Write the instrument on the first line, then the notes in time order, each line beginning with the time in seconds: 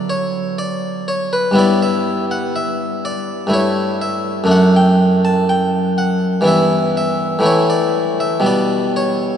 harpsichord
Already playing: D3 F#3 B3 F#4
0.10 C#5
0.58 D5
1.08 C#5
1.33 B4
1.51 G2 G3 B3 E4
1.58 D5
1.82 E5
2.31 F#5
2.56 E5
3.05 D5
3.47 G2 A3 E4
3.54 C#5
4.02 E5
4.44 F#2 A3 D4
4.51 F#5
4.76 G5
5.25 A5
5.49 G5
5.98 F#5
6.41 G2 E3 B3 E4
6.48 E5
6.97 E5
7.39 A2 E3 A3 E4
7.46 C#5
7.70 D5
8.20 E5
8.40 B2 G3 B3
8.46 D5
8.96 C#5